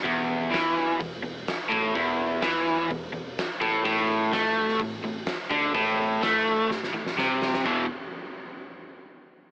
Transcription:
<<
  \new Staff \with { instrumentName = "Overdriven electric guitar" } { \clef bass \time 4/4 \key a \major \tempo 4 = 126 e,4 e4 e,8 e,8 r8 a,8 | e,4 e4 e,8 e,8 r8 a,8 | a,4 a4 a,8 a,8 r8 d8 | a,4 a4 a,8 a,8 c4 |
<e, b, e>8 r2. r8 | }
  \new Staff \with { instrumentName = "Picked electric bass" } { \clef bass \time 4/4 \key a \major e,,4 e,4 e,,8 e,,8 r8 a,,8 | e,,4 e,4 e,,8 e,,8 r8 a,,8 | a,,4 a,4 a,,8 a,,8 r8 d,8 | a,,4 a,4 a,,8 a,,8 c,4 |
e,,8 r2. r8 | }
  \new DrumStaff \with { instrumentName = "Drums" } \drummode { \time 4/4 <hho bd>4 <hho sn>4 <hho bd>4 <hho sn>8 bd8 | <hho bd>4 <hho sn>4 <hho bd>4 <hho sn>8 bd8 | <hho bd>4 <hho sn>8. sn16 <hho bd>4 <hho sn>8 bd8 | <hho bd>4 <hho sn>4 sn16 sn8 sn16 sn8 sn16 sn16 |
<cymc bd>4 r4 r4 r4 | }
>>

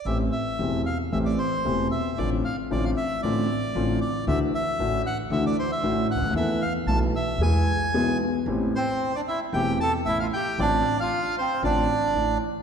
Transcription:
<<
  \new Staff \with { instrumentName = "Bandoneon" } { \time 4/4 \key a \minor \tempo 4 = 114 e''8 e''4 f''8 e''16 d''16 c''4 e''8 | d''8 f''8 d''16 f''16 e''8 d''4. d''8 | e''8 e''4 fis''8 e''16 d''16 c''16 e''8. fis''8 | e''8 f''8 a''8 e''8 gis''4. r8 |
r8 <c' c''>8. <d' d''>16 <e' e''>8 <g' g''>8 <a' a''>8 <e' e''>16 <f' f''>16 <g' g''>8 | <d' d''>8. <f' f''>8. <c' c''>8 <d' d''>4. r8 | }
  \new Staff \with { instrumentName = "Grand piano" } { \clef bass \time 4/4 \key a \minor <a,, a, e a c' g'>8 r8 <e,, e, e a c' g'>8 r8 <a,, a, e a c' g'>8 r8 <e,, e, e a c' g'>8 r8 | <a,, a, d a c' f'>8 r8 <a,, a, d a c' f'>8 r8 <a,, a, d a c' f'>8 r8 <a,, a, d a c' f'>8 r8 | <d, d e a d' fis'>8 r8 <a,, a, e a d' fis'>8 r8 <d, d e a d' fis'>8 r8 <a,, a, e a d' fis'>8 r32 cis,32 d,32 dis,32 | <e, e a b a'>8 r8 <b,, b, e a b a'>8 r8 <e, e gis b gis'>8 r8 <b,, b, e gis b gis'>8 r8 |
<a,, a, e a c' g'>8 r4. <e,, e, e a c' g'>8 r8 <a,, a,>8 r8 | <a,, a, d a c' f'>8 r4. <a,, a, d a c' f'>8 r8 <a,, a,>8 r8 | }
  \new Staff \with { instrumentName = "Upright bass" } { \clef bass \time 4/4 \key a \minor a,,16. r8 r32 e,,16. r8 r32 a,,16. r8 r32 e,,16. r8 r32 | a,,16. r8 r32 a,,16. r8 r32 a,,16. r8 r32 a,,16. r8 r32 | d,16. r8 r32 a,,16. r8 r32 d,16. r8 r32 a,,16. r16 cis,32 d,32 dis,32 | e,16. r8 r32 b,,16. r8 r32 e,16. r4. r32 |
a,,16. r4. r32 e,,16. r8 r32 a,,16. r8 r32 | a,,16. r4. r32 a,,16. r8 r32 a,,16. r8 r32 | }
>>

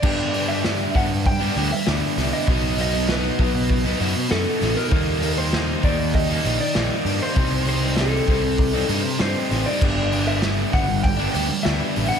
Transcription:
<<
  \new Staff \with { instrumentName = "Clean electric guitar" } { \time 4/4 \key g \major \tempo 4 = 98 d''8. e''8. fis''8 g''8. e''4 ees''16~ | ees''8 dis''8 b'4. r8 a'8. bes'16~ | bes'8. c''8. d''8 ees''8. d''4 c''16~ | c''8 c''8 a'4. r8 c''8. d''16~ |
d''8. e''8. fis''8 g''8. r16 e''8. fis''16 | }
  \new Staff \with { instrumentName = "Distorted electric guitar" } { \time 4/4 \key g \major <g, d g b d'>8. <g b d'>16 <g, d g b d'>8 <d g b d'>8. <g b d'>16 <d g b d'>8 <g, d g b d'>8. <g b d'>16 | <b, fis b dis'>8. <fis b dis'>16 <b, fis b dis'>8 <b, fis b dis'>8. <fis b dis'>16 <b, fis b dis'>8 <b, fis b dis'>8. <fis b dis'>16 | <ees g bes ees'>8. <g bes ees'>16 <ees g bes ees'>8 <ees g bes ees'>8. <g bes ees'>16 <ees g bes ees'>8 <ees g bes ees'>8. <g bes ees'>16 | <c g c' ees'>8. <g c' ees'>16 <c g c' ees'>8 <c g c' ees'>8. <g c' ees'>16 <c g c' ees'>8 <c g c' ees'>8. <g c' ees'>16 |
<g, d g b d'>8. <g b d'>16 <g, d g b d'>8 <d g b d'>8. <g b d'>16 <d g b d'>8 <g, d g b d'>8. <g b d'>16 | }
  \new Staff \with { instrumentName = "Overdriven electric guitar" } { \time 4/4 \key g \major <g, d g b d'>8 <d g b d'>8 <g, d g b d'>8 <d g b d'>8. <g b d'>16 <d g b d'>8 <g, d g b d'>8 <d g b d'>16 <g b d'>16 | <b, fis b dis'>8 <b, fis b dis'>8 <b, fis b dis'>8 <b, fis b dis'>8. <fis b dis'>16 <b, fis b dis'>8 <b, fis b dis'>8 <b, fis b dis'>16 <fis b dis'>16 | <ees g bes ees'>8 <ees g bes ees'>8 <ees g bes ees'>8 <ees g bes ees'>8. <g bes ees'>16 <ees g bes ees'>8 <ees g bes ees'>8 <ees g bes ees'>16 <g bes ees'>16 | <c g c' ees'>8 <c g c' ees'>8 <c g c' ees'>8 <c g c' ees'>8. <g c' ees'>16 <c g c' ees'>8 <c g c' ees'>8 <c g c' ees'>16 <g c' ees'>16 |
<g, d g b d'>8 <d g b d'>8 <g, d g b d'>8 <d g b d'>8. <g b d'>16 <d g b d'>8 <g, d g b d'>8 <d g b d'>16 <g b d'>16 | }
  \new Staff \with { instrumentName = "Picked electric bass" } { \clef bass \time 4/4 \key g \major g,4. g,4 d,16 r16 d,16 r16 c,16 r16 | b,,4. b,,4 fis,16 r16 fis,16 r16 a,,16 r16 | ees,4. ees,4 bes,,16 r16 bes,,16 r16 g,16 r16 | c,4. c,4 g,16 r16 g,16 r16 a,,16 r16 |
g,,4. g,,4 d,16 r16 d,16 r16 a,,16 r16 | }
  \new DrumStaff \with { instrumentName = "Drums" } \drummode { \time 4/4 <cymc bd>8 hho8 <hho sn>8 <hho bd>8 <hho bd>8 hho8 <hho sn>8 <hho sn>8 | <hho bd>8 hho8 <hho sn>8 <hho bd>8 <hho bd>8 hho8 <hho sn>8 <hho sn>8 | <hho bd>8 hho8 <hho sn>8 <hho bd>8 <hho bd>8 hho8 <hho sn>8 hho8 | <hho bd>8 hho8 <hho sn>8 <hho bd>8 <hho bd>8 hho8 <hho sn>8 <hho sn>8 |
<cymc bd>8 hho8 <hho sn>8 <hho bd>8 <hho bd>8 hho8 <hho sn>8 hho8 | }
>>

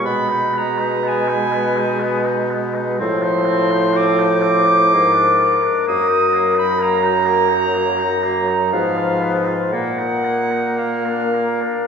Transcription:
<<
  \new Staff \with { instrumentName = "Clarinet" } { \time 3/4 \key ees \minor \tempo 4 = 62 ces'''8 bes''8 aes''4. r8 | c'''4 d'''2 | ees'''8. ces'''16 bes''2 | f''8. r16 ges''4 f''4 | }
  \new Staff \with { instrumentName = "Flute" } { \time 3/4 \key ees \minor ces''2. | c''2 bes'4~ | bes'2~ bes'8 r8 | ces''4 bes'2 | }
  \new Staff \with { instrumentName = "Oboe" } { \time 3/4 \key ees \minor ces'16 ees'16 ces'16 ees'16 ces'16 ees'16 ces'16 ees'16 ces'16 ees'16 ces'16 ees'16 | c'16 ees'16 c'16 ees'16 c'16 ees'16 c'16 ees'16 bes16 d'16 f'16 d'16 | bes16 ees'16 bes16 ees'16 bes16 ees'16 bes16 ees'16 bes16 ees'16 bes16 ees'16 | ces'16 f'16 ces'16 f'16 bes16 ees'16 bes16 ees'16 bes16 d'16 bes16 d'16 | }
  \new Staff \with { instrumentName = "French horn" } { \clef bass \time 3/4 \key ees \minor aes2. | f2~ f8 r8 | ges2. | f4 bes2 | }
  \new Staff \with { instrumentName = "Bassoon" } { \clef bass \time 3/4 \key ees \minor ces2. | a,2 aes,8 r8 | ges,2. | aes,4 bes,2 | }
>>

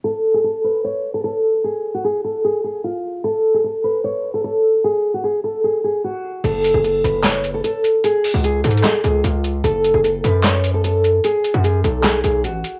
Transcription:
<<
  \new Staff \with { instrumentName = "Nylon-string guitar" } { \time 4/4 \key fis \minor \tempo 4 = 150 a'8. gis'16 a'8 b'8 cis''8. a'16 a'8 r8 | gis'8. fis'16 gis'8 a'8 gis'8 gis'8 eis'4 | a'8. gis'16 a'8 b'8 cis''8. a'16 a'8 r8 | gis'8. fis'16 gis'8 a'8 gis'8 gis'8 fis'4 |
a'8. gis'16 a'8 b'8 cis''8. a'16 a'8 r8 | gis'8. fis'16 gis'8 a'8 gis'8 gis'8 eis'4 | a'8. gis'16 a'8 b'8 cis''8. a'16 a'8 r8 | gis'8. fis'16 gis'8 a'8 gis'8 gis'8 fis'4 | }
  \new Staff \with { instrumentName = "808-style bass" } { \clef bass \time 4/4 \key fis \minor r1 | r1 | r1 | r1 |
fis,,8. fis,,8. fis,,4. r4 | r8. cis,8. gis,8 r8 cis,8 cis,4 | fis,,8. fis,,8. fis,2~ fis,8 | r8. fis,8. b,,4 b,,8 a,,8 r8 | }
  \new DrumStaff \with { instrumentName = "Drums" } \drummode { \time 4/4 r4 r4 r4 r4 | r4 r4 r4 r4 | r4 r4 r4 r4 | r4 r4 r4 r4 |
<cymc hh>8 hh8 hh8 hh8 <hc hh sn>8 hh8 hh8 hh8 | hh8 hho8 \tuplet 3/2 { hh16 r16 r16 hh16 hh16 hh16 } <hc hh sn>8 hh8 hh8 hh8 | hh8 hh8 hh8 hh8 <hc hh sn>8 hh8 hh8 hh8 | hh8 hh8 hh8 hh8 <hc hh sn>8 hh8 hh8 hh8 | }
>>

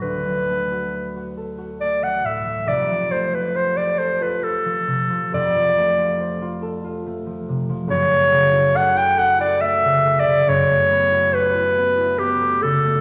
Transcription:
<<
  \new Staff \with { instrumentName = "Clarinet" } { \time 3/4 \key b \minor \tempo 4 = 69 b'4. r8 d''16 fis''16 e''8 | d''8 c''16 b'16 c''16 d''16 c''16 b'16 a'4 | d''4. r4. | cis''4 fis''16 g''16 fis''16 d''16 \tuplet 3/2 { e''4 d''8 } |
cis''4 b'4 g'8 a'8 | }
  \new Staff \with { instrumentName = "Harp" } { \time 3/4 \key b \minor <d, fis a fis' a' d''>16 fis16 a16 fis'16 b'16 fis'16 a'16 fis'16 a16 fis16 a,16 fis16 | <f,, f,>16 f16 a16 g'16 c''16 f'16 a'16 f'16 g'16 f16 c16 f16 | <f,, f,>16 f16 a16 f'16 c''16 f'16 a'16 f'16 a16 f16 c16 f16 | <fis,, fis,>16 a16 cis16 e'16 a'16 e'16 a'16 e'16 a16 cis16 a16 cis16 |
<fis,, fis,>16 a16 b16 e'16 g'16 e'16 b16 e'16 b16 a16 cis16 a16 | }
>>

